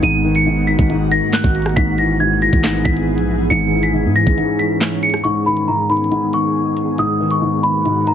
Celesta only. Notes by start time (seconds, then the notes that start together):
0.03 D#7
0.36 C#7
0.67 B6
1.12 A#6
1.33 F#6
1.76 B6
1.99 A#6
2.20 G#6
2.42 A#6
2.85 B6
3.50 C#7
3.83 B6
4.16 A#6
4.59 B6
5.03 C#7
5.24 C#6
5.46 B5
5.68 A#5
5.90 B5
6.34 C#6
6.99 D#6
7.31 C#6
7.63 B5
8.07 A#5